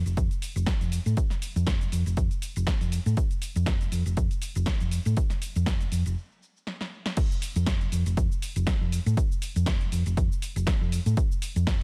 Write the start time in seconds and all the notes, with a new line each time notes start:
0.06 F1, closed hi-hat, shaker
0.17 F2, kick, closed hi-hat, shaker
0.31 closed hi-hat, shaker
0.42 open hi-hat, shaker
0.56 F1, closed hi-hat, shaker
0.66 kick, snare, closed hi-hat, shaker
0.81 F2, closed hi-hat, shaker
0.92 open hi-hat, shaker
1.06 A2, closed hi-hat, shaker
1.17 kick, closed hi-hat, shaker
1.30 snare, closed hi-hat, shaker
1.42 open hi-hat, shaker
1.56 F2, closed hi-hat, shaker
1.67 F1, kick, snare, closed hi-hat, shaker
1.81 closed hi-hat, shaker
1.92 F2, open hi-hat, shaker
2.06 F1, closed hi-hat, shaker
2.17 F2, kick, closed hi-hat, shaker
2.31 closed hi-hat, shaker
2.42 open hi-hat, shaker
2.56 F1, closed hi-hat, shaker
2.67 kick, snare, closed hi-hat, shaker
2.81 F2, closed hi-hat, shaker
2.92 open hi-hat, shaker
3.06 A2, closed hi-hat, shaker
3.17 kick, closed hi-hat, shaker
3.31 closed hi-hat, shaker
3.42 open hi-hat, shaker
3.56 F2, closed hi-hat, shaker
3.66 F1, kick, snare, closed hi-hat, shaker
3.81 closed hi-hat, shaker
3.92 F2, open hi-hat, shaker
4.06 F1, closed hi-hat, shaker
4.17 F2, kick, closed hi-hat, shaker
4.31 closed hi-hat, shaker
4.42 open hi-hat, shaker
4.55 F1, closed hi-hat, shaker
4.66 kick, snare, closed hi-hat, shaker
4.80 F2, closed hi-hat, shaker
4.91 open hi-hat, shaker
5.05 A2, closed hi-hat, shaker
5.17 kick, closed hi-hat, shaker
5.30 snare, closed hi-hat, shaker
5.42 open hi-hat, shaker
5.56 F2, closed hi-hat, shaker
5.66 F1, kick, snare, closed hi-hat, shaker
5.81 closed hi-hat, shaker
5.92 F2, open hi-hat, shaker
6.06 F1, closed hi-hat, shaker
6.67 snare
6.81 snare
7.06 snare
7.17 kick, closed hi-hat, crash, shaker
7.32 shaker
7.42 open hi-hat, shaker
7.56 F2, closed hi-hat, shaker
7.66 F1, kick, snare, closed hi-hat, shaker
7.81 closed hi-hat
7.92 F2, open hi-hat, shaker
8.06 F1, closed hi-hat, shaker
8.17 F2, kick, closed hi-hat, shaker
8.32 shaker
8.42 open hi-hat, shaker
8.56 F1, closed hi-hat, shaker
8.67 kick, snare, closed hi-hat, shaker
8.81 F2
8.92 open hi-hat, shaker
9.06 A2, closed hi-hat, shaker
9.17 kick, closed hi-hat, shaker
9.32 shaker
9.42 open hi-hat, shaker
9.56 F2, closed hi-hat, shaker
9.66 F1, kick, snare, closed hi-hat, shaker
9.81 closed hi-hat
9.92 F2, open hi-hat, shaker
10.06 F1, closed hi-hat, shaker
10.17 F2, kick, closed hi-hat, shaker
10.32 shaker
10.42 open hi-hat, shaker
10.56 F1, closed hi-hat, shaker
10.67 kick, snare, closed hi-hat, shaker
10.81 F2
10.92 open hi-hat, shaker
11.06 A2, closed hi-hat, shaker
11.17 kick, closed hi-hat, shaker
11.32 shaker
11.42 open hi-hat, shaker
11.56 F2, closed hi-hat, shaker
11.67 F1, kick, snare, closed hi-hat, shaker